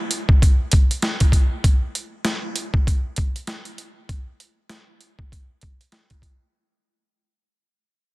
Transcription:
0.11 closed hi-hat
0.29 kick
0.42 kick, closed hi-hat
0.72 kick, closed hi-hat
0.91 closed hi-hat
1.02 snare, closed hi-hat
1.20 kick, closed hi-hat
1.32 kick, closed hi-hat
1.64 kick, closed hi-hat
1.95 closed hi-hat
2.25 snare, closed hi-hat
2.56 closed hi-hat
2.74 kick
2.87 kick, closed hi-hat
3.16 kick, closed hi-hat
3.36 closed hi-hat
3.47 snare, closed hi-hat
3.65 closed hi-hat
3.78 closed hi-hat
4.09 kick, closed hi-hat
4.40 closed hi-hat
4.70 snare, closed hi-hat
5.01 closed hi-hat
5.19 kick
5.32 kick, closed hi-hat
5.61 kick, closed hi-hat
5.81 closed hi-hat
5.92 snare, closed hi-hat
6.10 kick, closed hi-hat
6.22 kick, closed hi-hat

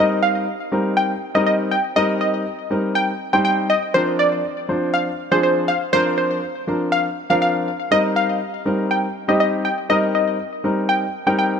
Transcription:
Already playing: G3 C4 D#4 D#5
0.00 A#4
0.23 F5
0.72 G3 C4 D#4 A#4
0.97 G5
1.35 G3 C4 D#4 A#4 D#5
1.47 D#5
1.71 G5
1.96 G3 C4 D#4 A#4 D#5
2.21 D#5
2.70 G3 C4 D#4 A#4
2.95 G5
3.33 G3 C4 D#4 C5 G5
3.45 G5
3.70 D#5
3.94 F3 C4 D4 A#4 C5
4.19 D5
4.69 F3 C4 D4 C5
4.94 F5
5.31 F3 C4 D4 G#4 C5
5.43 C5
5.68 F5
5.93 F3 C4 D4 A#4 C5
6.18 C5
6.67 F3 C4 D4 A#4
6.92 F5
7.30 F3 C4 D4 A#4 F5
7.42 F5
7.91 G3 C4 D#4 A#4 D#5
8.16 F5
8.65 G3 C4 D#4 A#4
8.91 G5
9.28 G3 C4 D#4 G4 D#5
9.40 D#5
9.65 G5
9.89 G3 C4 D#4 A#4 D#5
10.15 D#5
10.64 G3 C4 D#4 A#4
10.89 G5
11.26 G3 C4 D#4 A#4 G5
11.39 G5

